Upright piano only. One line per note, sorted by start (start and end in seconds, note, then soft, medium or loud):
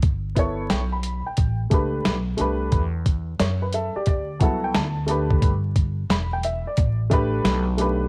0.35 0.79 B3 medium
0.35 0.79 E4 medium
0.35 0.80 A4 medium
0.35 0.81 C#5 medium
0.70 0.92 G5 medium
0.92 1.25 B5 medium
1.26 1.58 G5 medium
1.70 2.13 A3 medium
1.70 2.14 D4 medium
1.70 2.15 G4 medium
1.70 2.15 B4 medium
2.37 2.81 A3 medium
2.37 2.81 D4 medium
2.37 2.82 G4 medium
2.37 2.83 B4 medium
3.40 3.61 C#5 medium
3.62 3.73 B4 medium
3.74 3.95 A4 medium
3.74 3.95 E5 medium
3.96 4.28 G4 medium
3.96 4.07 D5 medium
4.08 4.39 D5 medium
4.40 4.83 F#3 medium
4.40 4.84 B3 medium
4.40 4.84 E4 medium
4.40 4.85 A4 medium
4.40 4.62 F#5 medium
4.64 4.75 G5 medium
4.75 5.07 A5 medium
5.07 5.50 A3 medium
5.07 5.51 D4 medium
5.07 5.52 G4 medium
5.07 5.40 A5 medium
5.11 5.52 B4 medium
6.11 6.31 B5 medium
6.33 6.44 G5 medium
6.45 6.65 E5 medium
6.67 6.99 D5 medium
7.10 7.62 A3 medium
7.10 7.62 D4 medium
7.10 7.63 G4 medium
7.10 7.64 B4 medium
7.77 8.08 A3 medium
7.77 8.08 D4 medium
7.77 8.08 G4 medium
7.77 8.08 B4 medium